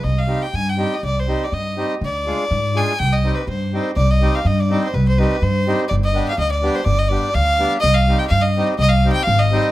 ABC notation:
X:1
M:2/4
L:1/16
Q:"Swing 16ths" 1/4=124
K:Cm
V:1 name="Fiddle"
e f2 g a g2 e | d c2 d e3 z | d6 a2 | g e2 =B c3 z |
d e2 f e d2 c | =B c B2 c3 z | d e2 f e d2 c | d e d2 f3 z |
e f2 g f e2 z | e f2 g f e2 z |]
V:2 name="Accordion"
z2 [G,CEG]2 z2 [G,CEG]2 | z2 [G,CEG]2 z2 [G,CEG]2 | z2 [A,DFA]2 z2 [A,DFA]2 | z2 [G,CEG]2 z2 [G,CEG]2 |
z2 [G,CEG]2 z2 [G,CEG]2 | z2 [G,CEG]2 z2 [G,CEG]2 | z2 [G,=B,DG]2 z2 [G,B,DG]2 | z2 [G,=B,DG]2 z2 [G,B,DG]2 |
z2 [G,CEG]2 z2 [G,CEG]2 | z2 [G,CEG]2 z2 [G,CEG]2 |]
V:3 name="Upright bass" clef=bass
C,,4 G,,4 | C,,4 G,,4 | D,,4 A,,4 | C,,4 G,,4 |
C,,4 G,,4 | C,,4 G,,4 | G,,,4 D,,4 | G,,,4 D,,4 |
C,,4 G,,4 | C,,4 A,,,4 |]